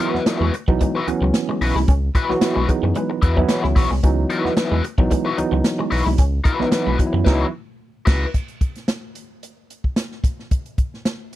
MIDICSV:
0, 0, Header, 1, 8, 480
1, 0, Start_track
1, 0, Key_signature, 4, "minor"
1, 0, Tempo, 539568
1, 1673, Time_signature, 4, 2, 24, 8
1, 10104, End_track
2, 0, Start_track
2, 0, Title_t, "Overdriven electric guitar"
2, 0, Program_c, 0, 29
2, 0, Note_on_c, 0, 64, 73
2, 5, Note_on_c, 0, 66, 79
2, 15, Note_on_c, 0, 71, 90
2, 179, Note_off_c, 0, 64, 0
2, 183, Note_off_c, 0, 66, 0
2, 188, Note_off_c, 0, 71, 0
2, 238, Note_on_c, 0, 64, 90
2, 249, Note_on_c, 0, 66, 103
2, 257, Note_on_c, 0, 71, 101
2, 460, Note_off_c, 0, 64, 0
2, 465, Note_off_c, 0, 66, 0
2, 469, Note_off_c, 0, 71, 0
2, 846, Note_on_c, 0, 71, 75
2, 855, Note_on_c, 0, 66, 62
2, 863, Note_on_c, 0, 64, 68
2, 951, Note_off_c, 0, 64, 0
2, 955, Note_off_c, 0, 66, 0
2, 962, Note_off_c, 0, 71, 0
2, 1438, Note_on_c, 0, 64, 84
2, 1446, Note_on_c, 0, 66, 85
2, 1456, Note_on_c, 0, 71, 107
2, 1557, Note_off_c, 0, 71, 0
2, 1568, Note_off_c, 0, 66, 0
2, 1573, Note_off_c, 0, 64, 0
2, 1913, Note_on_c, 0, 64, 89
2, 1922, Note_on_c, 0, 66, 83
2, 1927, Note_on_c, 0, 71, 97
2, 2050, Note_off_c, 0, 64, 0
2, 2055, Note_off_c, 0, 66, 0
2, 2057, Note_off_c, 0, 71, 0
2, 2151, Note_on_c, 0, 64, 97
2, 2160, Note_on_c, 0, 66, 88
2, 2168, Note_on_c, 0, 71, 93
2, 2373, Note_off_c, 0, 64, 0
2, 2377, Note_off_c, 0, 66, 0
2, 2381, Note_off_c, 0, 71, 0
2, 2864, Note_on_c, 0, 64, 95
2, 2878, Note_on_c, 0, 66, 94
2, 2882, Note_on_c, 0, 71, 93
2, 2983, Note_off_c, 0, 71, 0
2, 2993, Note_off_c, 0, 66, 0
2, 3004, Note_off_c, 0, 64, 0
2, 3102, Note_on_c, 0, 64, 90
2, 3115, Note_on_c, 0, 66, 112
2, 3122, Note_on_c, 0, 71, 103
2, 3219, Note_off_c, 0, 71, 0
2, 3230, Note_off_c, 0, 66, 0
2, 3243, Note_off_c, 0, 64, 0
2, 3343, Note_on_c, 0, 64, 73
2, 3351, Note_on_c, 0, 66, 77
2, 3359, Note_on_c, 0, 71, 76
2, 3454, Note_off_c, 0, 64, 0
2, 3458, Note_off_c, 0, 66, 0
2, 3461, Note_off_c, 0, 71, 0
2, 3824, Note_on_c, 0, 64, 81
2, 3832, Note_on_c, 0, 66, 93
2, 3840, Note_on_c, 0, 71, 91
2, 4005, Note_off_c, 0, 64, 0
2, 4010, Note_off_c, 0, 66, 0
2, 4014, Note_off_c, 0, 71, 0
2, 4068, Note_on_c, 0, 64, 93
2, 4076, Note_on_c, 0, 66, 89
2, 4081, Note_on_c, 0, 71, 94
2, 4287, Note_off_c, 0, 64, 0
2, 4291, Note_off_c, 0, 66, 0
2, 4294, Note_off_c, 0, 71, 0
2, 4669, Note_on_c, 0, 71, 70
2, 4678, Note_on_c, 0, 66, 78
2, 4685, Note_on_c, 0, 64, 60
2, 4774, Note_off_c, 0, 64, 0
2, 4781, Note_off_c, 0, 66, 0
2, 4787, Note_off_c, 0, 71, 0
2, 5254, Note_on_c, 0, 64, 84
2, 5263, Note_on_c, 0, 66, 106
2, 5272, Note_on_c, 0, 71, 97
2, 5367, Note_off_c, 0, 71, 0
2, 5378, Note_off_c, 0, 66, 0
2, 5395, Note_off_c, 0, 64, 0
2, 5729, Note_on_c, 0, 64, 88
2, 5740, Note_on_c, 0, 66, 86
2, 5745, Note_on_c, 0, 71, 81
2, 5916, Note_off_c, 0, 64, 0
2, 5921, Note_off_c, 0, 66, 0
2, 5924, Note_off_c, 0, 71, 0
2, 5974, Note_on_c, 0, 64, 80
2, 5982, Note_on_c, 0, 66, 85
2, 5992, Note_on_c, 0, 71, 98
2, 6199, Note_off_c, 0, 64, 0
2, 6203, Note_off_c, 0, 66, 0
2, 6208, Note_off_c, 0, 71, 0
2, 6446, Note_on_c, 0, 71, 100
2, 6455, Note_on_c, 0, 66, 103
2, 6466, Note_on_c, 0, 64, 95
2, 6618, Note_off_c, 0, 71, 0
2, 6623, Note_off_c, 0, 66, 0
2, 6629, Note_off_c, 0, 64, 0
2, 7166, Note_on_c, 0, 64, 96
2, 7174, Note_on_c, 0, 66, 97
2, 7182, Note_on_c, 0, 71, 110
2, 7339, Note_off_c, 0, 64, 0
2, 7343, Note_off_c, 0, 66, 0
2, 7348, Note_off_c, 0, 71, 0
2, 10104, End_track
3, 0, Start_track
3, 0, Title_t, "Tine electric piano"
3, 0, Program_c, 1, 4
3, 0, Note_on_c, 1, 52, 87
3, 0, Note_on_c, 1, 54, 88
3, 0, Note_on_c, 1, 59, 85
3, 0, Note_on_c, 1, 64, 99
3, 391, Note_off_c, 1, 52, 0
3, 392, Note_off_c, 1, 54, 0
3, 392, Note_off_c, 1, 59, 0
3, 392, Note_off_c, 1, 64, 0
3, 605, Note_on_c, 1, 52, 89
3, 605, Note_on_c, 1, 54, 84
3, 607, Note_on_c, 1, 59, 81
3, 607, Note_on_c, 1, 63, 98
3, 871, Note_off_c, 1, 52, 0
3, 871, Note_off_c, 1, 54, 0
3, 872, Note_off_c, 1, 59, 0
3, 872, Note_off_c, 1, 63, 0
3, 957, Note_on_c, 1, 52, 87
3, 958, Note_on_c, 1, 54, 78
3, 958, Note_on_c, 1, 61, 93
3, 959, Note_on_c, 1, 59, 82
3, 1670, Note_off_c, 1, 52, 0
3, 1671, Note_off_c, 1, 54, 0
3, 1671, Note_off_c, 1, 59, 0
3, 1671, Note_off_c, 1, 61, 0
3, 2041, Note_on_c, 1, 52, 87
3, 2041, Note_on_c, 1, 66, 101
3, 2042, Note_on_c, 1, 54, 91
3, 2043, Note_on_c, 1, 59, 86
3, 2306, Note_off_c, 1, 52, 0
3, 2306, Note_off_c, 1, 54, 0
3, 2306, Note_off_c, 1, 66, 0
3, 2307, Note_off_c, 1, 59, 0
3, 2392, Note_on_c, 1, 52, 82
3, 2392, Note_on_c, 1, 68, 73
3, 2394, Note_on_c, 1, 54, 71
3, 2394, Note_on_c, 1, 59, 75
3, 2395, Note_on_c, 1, 63, 87
3, 2614, Note_off_c, 1, 68, 0
3, 2635, Note_on_c, 1, 71, 75
3, 2839, Note_off_c, 1, 52, 0
3, 2840, Note_off_c, 1, 54, 0
3, 2840, Note_off_c, 1, 59, 0
3, 2841, Note_off_c, 1, 63, 0
3, 2973, Note_off_c, 1, 71, 0
3, 2996, Note_on_c, 1, 52, 99
3, 2997, Note_on_c, 1, 54, 94
3, 2997, Note_on_c, 1, 63, 87
3, 2997, Note_on_c, 1, 71, 67
3, 2998, Note_on_c, 1, 59, 100
3, 3050, Note_off_c, 1, 63, 0
3, 3054, Note_on_c, 1, 64, 108
3, 3101, Note_off_c, 1, 71, 0
3, 3110, Note_on_c, 1, 73, 67
3, 3440, Note_off_c, 1, 52, 0
3, 3440, Note_off_c, 1, 54, 0
3, 3441, Note_off_c, 1, 59, 0
3, 3469, Note_off_c, 1, 64, 0
3, 3554, Note_off_c, 1, 73, 0
3, 3587, Note_on_c, 1, 52, 89
3, 3587, Note_on_c, 1, 54, 93
3, 3588, Note_on_c, 1, 59, 80
3, 3588, Note_on_c, 1, 63, 94
3, 4216, Note_off_c, 1, 54, 0
3, 4217, Note_off_c, 1, 52, 0
3, 4217, Note_off_c, 1, 59, 0
3, 4217, Note_off_c, 1, 63, 0
3, 4433, Note_on_c, 1, 52, 92
3, 4434, Note_on_c, 1, 54, 82
3, 4434, Note_on_c, 1, 59, 81
3, 4435, Note_on_c, 1, 63, 97
3, 4698, Note_off_c, 1, 52, 0
3, 4698, Note_off_c, 1, 54, 0
3, 4698, Note_off_c, 1, 59, 0
3, 4699, Note_off_c, 1, 63, 0
3, 4786, Note_on_c, 1, 54, 85
3, 4786, Note_on_c, 1, 59, 83
3, 4786, Note_on_c, 1, 63, 110
3, 4787, Note_on_c, 1, 52, 86
3, 5499, Note_off_c, 1, 52, 0
3, 5499, Note_off_c, 1, 54, 0
3, 5499, Note_off_c, 1, 59, 0
3, 5499, Note_off_c, 1, 63, 0
3, 5871, Note_on_c, 1, 52, 91
3, 5872, Note_on_c, 1, 54, 78
3, 5873, Note_on_c, 1, 59, 84
3, 5875, Note_on_c, 1, 63, 93
3, 6136, Note_off_c, 1, 52, 0
3, 6137, Note_off_c, 1, 54, 0
3, 6137, Note_off_c, 1, 59, 0
3, 6138, Note_off_c, 1, 63, 0
3, 6224, Note_on_c, 1, 52, 79
3, 6225, Note_on_c, 1, 54, 70
3, 6226, Note_on_c, 1, 59, 73
3, 6226, Note_on_c, 1, 63, 66
3, 6283, Note_on_c, 1, 64, 91
3, 6284, Note_off_c, 1, 63, 0
3, 6456, Note_off_c, 1, 54, 0
3, 6459, Note_off_c, 1, 52, 0
3, 6459, Note_off_c, 1, 59, 0
3, 6467, Note_on_c, 1, 54, 105
3, 6468, Note_on_c, 1, 63, 112
3, 6469, Note_on_c, 1, 52, 106
3, 6470, Note_on_c, 1, 59, 94
3, 6492, Note_off_c, 1, 64, 0
3, 6527, Note_on_c, 1, 64, 103
3, 6630, Note_off_c, 1, 54, 0
3, 6631, Note_off_c, 1, 52, 0
3, 6631, Note_off_c, 1, 63, 0
3, 6632, Note_off_c, 1, 59, 0
3, 6665, Note_off_c, 1, 64, 0
3, 10104, End_track
4, 0, Start_track
4, 0, Title_t, "Clean electric guitar"
4, 0, Program_c, 2, 27
4, 127, Note_on_c, 2, 59, 70
4, 210, Note_off_c, 2, 59, 0
4, 370, Note_on_c, 2, 56, 79
4, 452, Note_off_c, 2, 56, 0
4, 603, Note_on_c, 2, 54, 61
4, 687, Note_off_c, 2, 54, 0
4, 718, Note_on_c, 2, 56, 86
4, 812, Note_off_c, 2, 56, 0
4, 1086, Note_on_c, 2, 54, 65
4, 1168, Note_off_c, 2, 54, 0
4, 1324, Note_on_c, 2, 56, 80
4, 1407, Note_off_c, 2, 56, 0
4, 1566, Note_on_c, 2, 56, 74
4, 1648, Note_off_c, 2, 56, 0
4, 1678, Note_on_c, 2, 61, 86
4, 1771, Note_off_c, 2, 61, 0
4, 2044, Note_on_c, 2, 59, 81
4, 2126, Note_off_c, 2, 59, 0
4, 2275, Note_on_c, 2, 56, 71
4, 2360, Note_off_c, 2, 56, 0
4, 2520, Note_on_c, 2, 54, 70
4, 2603, Note_off_c, 2, 54, 0
4, 2632, Note_on_c, 2, 56, 92
4, 2726, Note_off_c, 2, 56, 0
4, 3001, Note_on_c, 2, 54, 64
4, 3083, Note_off_c, 2, 54, 0
4, 3236, Note_on_c, 2, 56, 77
4, 3319, Note_off_c, 2, 56, 0
4, 3477, Note_on_c, 2, 56, 66
4, 3560, Note_off_c, 2, 56, 0
4, 3595, Note_on_c, 2, 61, 77
4, 3686, Note_off_c, 2, 61, 0
4, 3959, Note_on_c, 2, 59, 70
4, 4040, Note_off_c, 2, 59, 0
4, 4196, Note_on_c, 2, 56, 73
4, 4278, Note_off_c, 2, 56, 0
4, 4441, Note_on_c, 2, 54, 69
4, 4521, Note_off_c, 2, 54, 0
4, 4553, Note_on_c, 2, 56, 81
4, 4644, Note_off_c, 2, 56, 0
4, 4918, Note_on_c, 2, 54, 67
4, 4998, Note_off_c, 2, 54, 0
4, 5154, Note_on_c, 2, 56, 79
4, 5236, Note_off_c, 2, 56, 0
4, 5393, Note_on_c, 2, 56, 68
4, 5475, Note_off_c, 2, 56, 0
4, 5508, Note_on_c, 2, 61, 83
4, 5600, Note_off_c, 2, 61, 0
4, 5868, Note_on_c, 2, 59, 74
4, 5952, Note_off_c, 2, 59, 0
4, 6109, Note_on_c, 2, 56, 78
4, 6193, Note_off_c, 2, 56, 0
4, 6354, Note_on_c, 2, 54, 70
4, 6436, Note_off_c, 2, 54, 0
4, 10104, End_track
5, 0, Start_track
5, 0, Title_t, "Analog synth bass"
5, 0, Program_c, 3, 38
5, 123, Note_on_c, 3, 40, 50
5, 169, Note_off_c, 3, 40, 0
5, 358, Note_on_c, 3, 40, 89
5, 452, Note_off_c, 3, 40, 0
5, 606, Note_on_c, 3, 35, 88
5, 696, Note_off_c, 3, 35, 0
5, 951, Note_on_c, 3, 37, 48
5, 1003, Note_off_c, 3, 37, 0
5, 1078, Note_on_c, 3, 37, 97
5, 1170, Note_off_c, 3, 37, 0
5, 1432, Note_on_c, 3, 35, 95
5, 1535, Note_off_c, 3, 35, 0
5, 1556, Note_on_c, 3, 36, 84
5, 1649, Note_off_c, 3, 36, 0
5, 1674, Note_on_c, 3, 37, 103
5, 1867, Note_off_c, 3, 37, 0
5, 2039, Note_on_c, 3, 35, 48
5, 2084, Note_off_c, 3, 35, 0
5, 2279, Note_on_c, 3, 35, 92
5, 2369, Note_off_c, 3, 35, 0
5, 2515, Note_on_c, 3, 42, 85
5, 2607, Note_off_c, 3, 42, 0
5, 2870, Note_on_c, 3, 40, 83
5, 3062, Note_off_c, 3, 40, 0
5, 3240, Note_on_c, 3, 37, 92
5, 3328, Note_off_c, 3, 37, 0
5, 3344, Note_on_c, 3, 35, 100
5, 3447, Note_off_c, 3, 35, 0
5, 3477, Note_on_c, 3, 36, 89
5, 3566, Note_off_c, 3, 36, 0
5, 3590, Note_on_c, 3, 37, 108
5, 3781, Note_off_c, 3, 37, 0
5, 3955, Note_on_c, 3, 40, 51
5, 3999, Note_off_c, 3, 40, 0
5, 4192, Note_on_c, 3, 40, 90
5, 4283, Note_off_c, 3, 40, 0
5, 4432, Note_on_c, 3, 35, 101
5, 4522, Note_off_c, 3, 35, 0
5, 4788, Note_on_c, 3, 37, 47
5, 4837, Note_off_c, 3, 37, 0
5, 4908, Note_on_c, 3, 37, 83
5, 4999, Note_off_c, 3, 37, 0
5, 5263, Note_on_c, 3, 35, 83
5, 5365, Note_off_c, 3, 35, 0
5, 5391, Note_on_c, 3, 36, 94
5, 5481, Note_off_c, 3, 36, 0
5, 5503, Note_on_c, 3, 37, 101
5, 5695, Note_off_c, 3, 37, 0
5, 5871, Note_on_c, 3, 35, 52
5, 5915, Note_off_c, 3, 35, 0
5, 6109, Note_on_c, 3, 35, 93
5, 6199, Note_off_c, 3, 35, 0
5, 6346, Note_on_c, 3, 42, 98
5, 6438, Note_off_c, 3, 42, 0
5, 6461, Note_on_c, 3, 37, 93
5, 6626, Note_off_c, 3, 37, 0
5, 7180, Note_on_c, 3, 37, 108
5, 7346, Note_off_c, 3, 37, 0
5, 10104, End_track
6, 0, Start_track
6, 0, Title_t, "Muted clean electric guitar strokes"
6, 1, Note_on_c, 9, 29, 45
6, 90, Note_off_c, 9, 29, 0
6, 479, Note_on_c, 9, 29, 42
6, 568, Note_off_c, 9, 29, 0
6, 959, Note_on_c, 9, 29, 45
6, 1048, Note_off_c, 9, 29, 0
6, 1438, Note_on_c, 9, 29, 43
6, 1527, Note_off_c, 9, 29, 0
6, 1918, Note_on_c, 9, 29, 42
6, 2007, Note_off_c, 9, 29, 0
6, 2393, Note_on_c, 9, 29, 42
6, 2482, Note_off_c, 9, 29, 0
6, 2873, Note_on_c, 9, 29, 45
6, 2962, Note_off_c, 9, 29, 0
6, 3352, Note_on_c, 9, 29, 50
6, 3441, Note_off_c, 9, 29, 0
6, 3833, Note_on_c, 9, 29, 44
6, 3922, Note_off_c, 9, 29, 0
6, 4311, Note_on_c, 9, 29, 41
6, 4400, Note_off_c, 9, 29, 0
6, 4792, Note_on_c, 9, 29, 43
6, 4881, Note_off_c, 9, 29, 0
6, 5266, Note_on_c, 9, 29, 49
6, 5355, Note_off_c, 9, 29, 0
6, 5744, Note_on_c, 9, 29, 39
6, 5833, Note_off_c, 9, 29, 0
6, 6226, Note_on_c, 9, 29, 48
6, 6315, Note_off_c, 9, 29, 0
6, 10104, End_track
7, 0, Start_track
7, 0, Title_t, "Muted overdriven electric guitar strokes"
7, 475, Note_on_c, 9, 29, 42
7, 564, Note_off_c, 9, 29, 0
7, 613, Note_on_c, 9, 29, 54
7, 702, Note_off_c, 9, 29, 0
7, 720, Note_on_c, 9, 29, 42
7, 809, Note_off_c, 9, 29, 0
7, 962, Note_on_c, 9, 29, 37
7, 1051, Note_off_c, 9, 29, 0
7, 1090, Note_on_c, 9, 29, 57
7, 1179, Note_off_c, 9, 29, 0
7, 1329, Note_on_c, 9, 29, 49
7, 1418, Note_off_c, 9, 29, 0
7, 1567, Note_on_c, 9, 29, 37
7, 1656, Note_off_c, 9, 29, 0
7, 2389, Note_on_c, 9, 29, 41
7, 2478, Note_off_c, 9, 29, 0
7, 2525, Note_on_c, 9, 29, 47
7, 2614, Note_off_c, 9, 29, 0
7, 2633, Note_on_c, 9, 29, 40
7, 2722, Note_off_c, 9, 29, 0
7, 2755, Note_on_c, 9, 29, 51
7, 2844, Note_off_c, 9, 29, 0
7, 2994, Note_on_c, 9, 29, 57
7, 3083, Note_off_c, 9, 29, 0
7, 3230, Note_on_c, 9, 29, 40
7, 3319, Note_off_c, 9, 29, 0
7, 3475, Note_on_c, 9, 29, 38
7, 3564, Note_off_c, 9, 29, 0
7, 4303, Note_on_c, 9, 29, 47
7, 4392, Note_off_c, 9, 29, 0
7, 4433, Note_on_c, 9, 29, 48
7, 4522, Note_off_c, 9, 29, 0
7, 4542, Note_on_c, 9, 29, 50
7, 4631, Note_off_c, 9, 29, 0
7, 4785, Note_on_c, 9, 29, 45
7, 4874, Note_off_c, 9, 29, 0
7, 4909, Note_on_c, 9, 29, 46
7, 4998, Note_off_c, 9, 29, 0
7, 5151, Note_on_c, 9, 29, 58
7, 5239, Note_off_c, 9, 29, 0
7, 5378, Note_on_c, 9, 29, 39
7, 5467, Note_off_c, 9, 29, 0
7, 6213, Note_on_c, 9, 29, 47
7, 6301, Note_off_c, 9, 29, 0
7, 6341, Note_on_c, 9, 29, 53
7, 6430, Note_off_c, 9, 29, 0
7, 10104, End_track
8, 0, Start_track
8, 0, Title_t, "Drums"
8, 0, Note_on_c, 9, 42, 75
8, 88, Note_off_c, 9, 42, 0
8, 135, Note_on_c, 9, 38, 36
8, 224, Note_off_c, 9, 38, 0
8, 233, Note_on_c, 9, 38, 120
8, 235, Note_on_c, 9, 42, 96
8, 322, Note_off_c, 9, 38, 0
8, 324, Note_off_c, 9, 42, 0
8, 479, Note_on_c, 9, 42, 81
8, 568, Note_off_c, 9, 42, 0
8, 604, Note_on_c, 9, 36, 110
8, 693, Note_off_c, 9, 36, 0
8, 717, Note_on_c, 9, 42, 83
8, 721, Note_on_c, 9, 36, 87
8, 806, Note_off_c, 9, 42, 0
8, 810, Note_off_c, 9, 36, 0
8, 959, Note_on_c, 9, 42, 67
8, 1048, Note_off_c, 9, 42, 0
8, 1191, Note_on_c, 9, 38, 127
8, 1194, Note_on_c, 9, 42, 105
8, 1280, Note_off_c, 9, 38, 0
8, 1283, Note_off_c, 9, 42, 0
8, 1436, Note_on_c, 9, 46, 101
8, 1525, Note_off_c, 9, 46, 0
8, 1569, Note_on_c, 9, 38, 35
8, 1658, Note_off_c, 9, 38, 0
8, 1671, Note_on_c, 9, 42, 90
8, 1674, Note_on_c, 9, 36, 104
8, 1760, Note_off_c, 9, 42, 0
8, 1763, Note_off_c, 9, 36, 0
8, 1910, Note_on_c, 9, 36, 91
8, 1912, Note_on_c, 9, 42, 70
8, 1999, Note_off_c, 9, 36, 0
8, 2001, Note_off_c, 9, 42, 0
8, 2049, Note_on_c, 9, 38, 34
8, 2138, Note_off_c, 9, 38, 0
8, 2147, Note_on_c, 9, 38, 116
8, 2148, Note_on_c, 9, 42, 105
8, 2235, Note_off_c, 9, 38, 0
8, 2237, Note_off_c, 9, 42, 0
8, 2389, Note_on_c, 9, 36, 89
8, 2393, Note_on_c, 9, 42, 74
8, 2478, Note_off_c, 9, 36, 0
8, 2482, Note_off_c, 9, 42, 0
8, 2627, Note_on_c, 9, 42, 78
8, 2716, Note_off_c, 9, 42, 0
8, 2868, Note_on_c, 9, 42, 69
8, 2869, Note_on_c, 9, 36, 85
8, 2957, Note_off_c, 9, 42, 0
8, 2958, Note_off_c, 9, 36, 0
8, 2996, Note_on_c, 9, 36, 72
8, 3085, Note_off_c, 9, 36, 0
8, 3101, Note_on_c, 9, 38, 127
8, 3104, Note_on_c, 9, 42, 104
8, 3190, Note_off_c, 9, 38, 0
8, 3193, Note_off_c, 9, 42, 0
8, 3239, Note_on_c, 9, 38, 37
8, 3328, Note_off_c, 9, 38, 0
8, 3345, Note_on_c, 9, 36, 103
8, 3348, Note_on_c, 9, 46, 90
8, 3434, Note_off_c, 9, 36, 0
8, 3437, Note_off_c, 9, 46, 0
8, 3483, Note_on_c, 9, 38, 35
8, 3572, Note_off_c, 9, 38, 0
8, 3589, Note_on_c, 9, 36, 99
8, 3589, Note_on_c, 9, 42, 101
8, 3678, Note_off_c, 9, 36, 0
8, 3678, Note_off_c, 9, 42, 0
8, 3826, Note_on_c, 9, 42, 71
8, 3915, Note_off_c, 9, 42, 0
8, 3963, Note_on_c, 9, 38, 38
8, 4052, Note_off_c, 9, 38, 0
8, 4063, Note_on_c, 9, 38, 118
8, 4064, Note_on_c, 9, 42, 90
8, 4152, Note_off_c, 9, 38, 0
8, 4153, Note_off_c, 9, 42, 0
8, 4308, Note_on_c, 9, 42, 76
8, 4397, Note_off_c, 9, 42, 0
8, 4431, Note_on_c, 9, 36, 106
8, 4520, Note_off_c, 9, 36, 0
8, 4545, Note_on_c, 9, 42, 76
8, 4548, Note_on_c, 9, 36, 82
8, 4634, Note_off_c, 9, 42, 0
8, 4637, Note_off_c, 9, 36, 0
8, 4788, Note_on_c, 9, 42, 68
8, 4877, Note_off_c, 9, 42, 0
8, 5021, Note_on_c, 9, 38, 124
8, 5024, Note_on_c, 9, 42, 105
8, 5110, Note_off_c, 9, 38, 0
8, 5113, Note_off_c, 9, 42, 0
8, 5263, Note_on_c, 9, 46, 93
8, 5352, Note_off_c, 9, 46, 0
8, 5402, Note_on_c, 9, 38, 33
8, 5491, Note_off_c, 9, 38, 0
8, 5498, Note_on_c, 9, 42, 93
8, 5502, Note_on_c, 9, 36, 112
8, 5587, Note_off_c, 9, 42, 0
8, 5591, Note_off_c, 9, 36, 0
8, 5738, Note_on_c, 9, 42, 70
8, 5739, Note_on_c, 9, 36, 109
8, 5827, Note_off_c, 9, 42, 0
8, 5828, Note_off_c, 9, 36, 0
8, 5879, Note_on_c, 9, 38, 38
8, 5968, Note_off_c, 9, 38, 0
8, 5976, Note_on_c, 9, 38, 105
8, 5978, Note_on_c, 9, 42, 104
8, 6065, Note_off_c, 9, 38, 0
8, 6067, Note_off_c, 9, 42, 0
8, 6219, Note_on_c, 9, 36, 90
8, 6222, Note_on_c, 9, 42, 82
8, 6308, Note_off_c, 9, 36, 0
8, 6311, Note_off_c, 9, 42, 0
8, 6460, Note_on_c, 9, 36, 88
8, 6461, Note_on_c, 9, 49, 69
8, 6463, Note_on_c, 9, 38, 96
8, 6549, Note_off_c, 9, 36, 0
8, 6550, Note_off_c, 9, 49, 0
8, 6551, Note_off_c, 9, 38, 0
8, 7177, Note_on_c, 9, 49, 94
8, 7179, Note_on_c, 9, 38, 108
8, 7180, Note_on_c, 9, 36, 118
8, 7266, Note_off_c, 9, 49, 0
8, 7268, Note_off_c, 9, 38, 0
8, 7269, Note_off_c, 9, 36, 0
8, 7421, Note_on_c, 9, 42, 76
8, 7422, Note_on_c, 9, 36, 94
8, 7510, Note_off_c, 9, 42, 0
8, 7511, Note_off_c, 9, 36, 0
8, 7546, Note_on_c, 9, 42, 45
8, 7635, Note_off_c, 9, 42, 0
8, 7659, Note_on_c, 9, 36, 99
8, 7661, Note_on_c, 9, 42, 62
8, 7748, Note_off_c, 9, 36, 0
8, 7750, Note_off_c, 9, 42, 0
8, 7788, Note_on_c, 9, 42, 51
8, 7798, Note_on_c, 9, 38, 31
8, 7877, Note_off_c, 9, 42, 0
8, 7887, Note_off_c, 9, 38, 0
8, 7899, Note_on_c, 9, 38, 105
8, 7901, Note_on_c, 9, 42, 93
8, 7988, Note_off_c, 9, 38, 0
8, 7990, Note_off_c, 9, 42, 0
8, 8143, Note_on_c, 9, 42, 78
8, 8232, Note_off_c, 9, 42, 0
8, 8388, Note_on_c, 9, 42, 70
8, 8477, Note_off_c, 9, 42, 0
8, 8632, Note_on_c, 9, 42, 62
8, 8721, Note_off_c, 9, 42, 0
8, 8755, Note_on_c, 9, 36, 70
8, 8844, Note_off_c, 9, 36, 0
8, 8863, Note_on_c, 9, 38, 107
8, 8866, Note_on_c, 9, 42, 95
8, 8952, Note_off_c, 9, 38, 0
8, 8955, Note_off_c, 9, 42, 0
8, 8999, Note_on_c, 9, 38, 34
8, 9088, Note_off_c, 9, 38, 0
8, 9107, Note_on_c, 9, 36, 104
8, 9111, Note_on_c, 9, 42, 84
8, 9196, Note_off_c, 9, 36, 0
8, 9200, Note_off_c, 9, 42, 0
8, 9247, Note_on_c, 9, 38, 31
8, 9336, Note_off_c, 9, 38, 0
8, 9351, Note_on_c, 9, 42, 90
8, 9352, Note_on_c, 9, 36, 102
8, 9440, Note_off_c, 9, 42, 0
8, 9441, Note_off_c, 9, 36, 0
8, 9481, Note_on_c, 9, 42, 42
8, 9570, Note_off_c, 9, 42, 0
8, 9590, Note_on_c, 9, 42, 62
8, 9591, Note_on_c, 9, 36, 92
8, 9679, Note_off_c, 9, 42, 0
8, 9680, Note_off_c, 9, 36, 0
8, 9732, Note_on_c, 9, 38, 31
8, 9821, Note_off_c, 9, 38, 0
8, 9833, Note_on_c, 9, 38, 99
8, 9835, Note_on_c, 9, 42, 95
8, 9922, Note_off_c, 9, 38, 0
8, 9924, Note_off_c, 9, 42, 0
8, 10104, End_track
0, 0, End_of_file